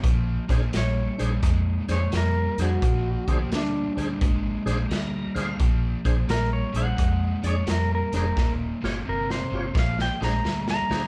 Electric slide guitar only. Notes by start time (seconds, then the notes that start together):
0.77 C#5
1.92 C#5
2.17 A#4
2.62 F#4
3.55 D4
6.30 A#4
6.53 C#5
6.77 F#5
7.47 C#5
7.70 A#4
7.95 A#4
8.17 A#4
9.09 A#4
9.31 C5
9.79 F5
10.02 G5
10.24 A#5
10.70 A#5